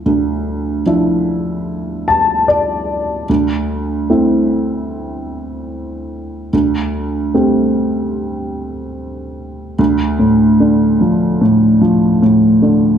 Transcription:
<<
  \new Staff \with { instrumentName = "Upright piano" } { \time 4/4 \key d \minor \tempo 4 = 74 r2 r8 a''8 d''4 | r1 | r1 | r1 | }
  \new Staff \with { instrumentName = "Upright piano" } { \clef bass \time 4/4 \key d \minor <d, f d' e'>4 <f d' e'>2. | d,4 <a c' e'>2. | d,4 <a c' g'>2. | d,8 a,8 d8 f8 a,8 f8 a,8 d8 | }
>>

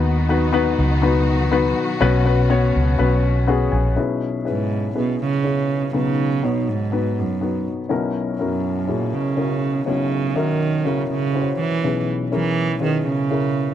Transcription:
<<
  \new Staff \with { instrumentName = "Upright piano" } { \time 4/4 \key b \major \tempo 4 = 122 <b dis' fis' b'>8 <b dis' fis' b'>8 <b dis' fis' b'>4 <b dis' fis' b'>4 <b dis' fis' b'>4 | <b cis' fis' b'>8 <b cis' fis' b'>8 <b cis' fis' cis''>4 <b cis' fis' b'>4 <b cis' fis' gis'>4 | <cis' e' gis' b'>4 <cis' e' gis' b'>4 <cis' e' gis' b'>4 <cis' e' gis' cis''>4 | <b dis' fis' b'>4 <b dis' fis' cis''>4 <b dis' fis' b'>4 <b dis' fis' b'>4 |
<cis' e' fis' ais'>4 <cis' e' fis' ais'>4 <cis' e' fis' gis'>4 <cis' e' fis' ais'>4 | <cis' e' fis' cis''>4 <cis' fis' ais' e''>4 <cis' e' fis' ais'>4 <cis' e' fis' c'' cis''>4 | <cis' e' gis' b'>4 <cis' e' gis' ais'>4 <cis' e' gis' b'>4 <cis' e' gis' ais'>4 | }
  \new Staff \with { instrumentName = "Upright piano" } { \clef bass \time 4/4 \key b \major dis4 r2. | b,4. r4. fis''8 gis''8 | <b,, b,>1 | <b,, b,>1 |
<b,, b,>1 | <b,, b,>1 | <b,, b,>1 | }
  \new Staff \with { instrumentName = "String section" } { \clef bass \time 4/4 \key b \major << { <b, fis fis'>1~ | <b, fis fis'>1 | r1 | r1 |
r1 | r1 | r1 | } \\ { <dis dis'>1 | <cis cis'>1 | r1 | r1 |
r1 | r1 | r1 | } >> }
  \new Staff \with { instrumentName = "Cello" } { \clef bass \time 4/4 \key b \major r1 | r1 | r4 gis,4 b,8 cis4. | cis4 b,8 gis,4 fis,4 r8 |
r4 fis,4 ais,8 cis4. | cis4 dis4 cis8 cis4 e8~ | e8 r8 e4 dis8 cis4. | }
  \new Staff \with { instrumentName = "Fingered electric bass" } { \clef bass \time 4/4 \key b \major dis,4. cis,2 r8 | b,,4. cis,8 b,,4. ais,,8 | r1 | r1 |
r1 | r1 | r1 | }
>>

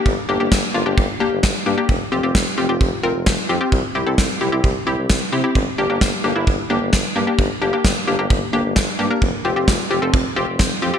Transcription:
<<
  \new Staff \with { instrumentName = "Synth pluck" } { \time 4/4 \key g \dorian \tempo 4 = 131 <bes d' g'>16 r16 <bes d' g'>16 <bes d' g'>8 r16 <bes d' f'>16 <bes d' g'>8 r16 <bes d' g'>8 r8 <bes d' g'>16 <bes d' g'>16 | r8 <c' f' g'>16 <c' f' g'>8 r16 <c' f' g'>16 <c' f' g'>8 r16 <c' f' bes'>8 r8 <c' f' g'>16 <c' f' g'>16 | r8 <c' e' g'>16 <c' e' a'>8 r16 <c' e' g'>16 <c' e' g'>8 r16 <c' e' g'>8 r8 <c' e' g'>16 <c' e' g'>16 | r8 <bes d' g'>16 <bes d' g'>8 r16 <bes d' g'>16 <bes d' e'>8 r16 <bes d' g'>8 r8 <bes d' g'>16 <bes d' g'>16~ |
<bes d' g'>16 r16 <bes d' g'>16 <bes d' g'>8 r16 <bes d' g'>16 <bes d' g'>8 r16 <bes d' g'>8 r8 <bes d' g'>16 <bes d' bes'>16 | r8 <c' f' g'>16 <c' f' g'>8 r16 <c' f' g'>16 <c' f' a'>8 r16 <c' f' g'>8 r8 <c' f' g'>16 <c' f' g'>16 | }
  \new Staff \with { instrumentName = "Tuba" } { \clef bass \time 4/4 \key g \dorian g,,16 r16 g,,16 g,,16 g,,16 r16 g,,16 g,,16 g,,16 r8 g,,16 g,,16 r16 g,16 r16 | f,,16 r16 f,,16 f,,16 f,,16 r16 f,,16 f,,16 f,,16 r16 f,,16 f,,16 f,,16 r16 f,16 r16 | c,16 r16 c,16 c,16 c,16 r16 c,16 c,16 c,16 r16 c,16 c,16 c,16 r16 c16 r16 | g,,16 r16 g,,16 g,,16 g,,16 r16 g,,16 g,,16 g,,16 r16 g,,16 g,,16 g,,16 r16 g,16 r16 |
g,,16 r16 g,,16 r16 g,,16 r16 g,,16 g,,16 g,,16 r16 g,,16 g,,16 g,,16 r16 g,16 r16 | f,,16 r16 f,,16 f,,16 f,,16 r16 f,,16 f,,16 f,,16 r16 f,,16 f,,16 f,,16 r16 f,16 r16 | }
  \new DrumStaff \with { instrumentName = "Drums" } \drummode { \time 4/4 bd4 <bd sn>4 bd4 <bd sn>4 | bd4 <bd sn>4 bd4 <bd sn>4 | bd4 <bd sn>4 bd4 <bd sn>4 | bd4 <bd sn>4 bd4 <bd sn>4 |
bd4 <bd sn>4 bd4 <bd sn>4 | bd4 <bd sn>4 bd4 <bd sn>4 | }
>>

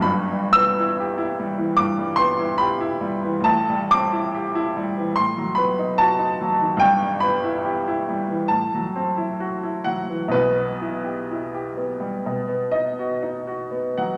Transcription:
<<
  \new Staff \with { instrumentName = "Grand piano" } { \time 4/4 \key e \minor \tempo 4 = 69 b''8 e'''4. d'''8 c'''8 b''4 | a''8 d'''4. c'''8 b''8 a''4 | g''8 b''4. a''4. fis''8 | b'2~ b'8 dis''4~ dis''16 fis''16 | }
  \new Staff \with { instrumentName = "Grand piano" } { \time 4/4 \key e \minor <g,, g,>16 g16 b16 e'16 g'16 e'16 g16 e16 g,16 g16 b16 e'16 g'16 e'16 g16 e16 | <a,, a,>16 g16 c'16 e'16 g'16 e'16 g16 e16 a,16 fis16 b16 dis'16 fis'16 dis'16 fis16 dis16 | <g,, g,>16 g16 b16 e'16 g'16 e'16 g16 e16 a,16 fis16 c'16 e'16 fis'16 e'16 fis16 e16 | <b,, b,>16 b16 e'16 g'16 e'16 g'16 b16 g16 b,16 b16 dis'16 fis'16 dis'16 fis'16 b16 fis16 | }
>>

